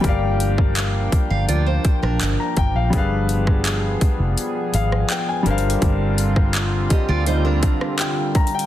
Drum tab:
HH |x-----x-----x-----x-----x-----x-----x-----x-----|x-----x-----x-----x-----x-----x-----x-----x-x-x-|x-----x-----x-----x-----x-----x-----x-----x-x-x-|
CP |------------x-----------------------x-----------|------------x-----------------------x-----------|------------x-----------------------x-----------|
SD |---------------------------------r--------------|---------r-----------------------r--------------|---------r-----------------------r--------------|
BD |o--------o--------o-----------o-----------o-----|o--------o--------o-----------------------------|o--------o--------o-----------o-----------o-----|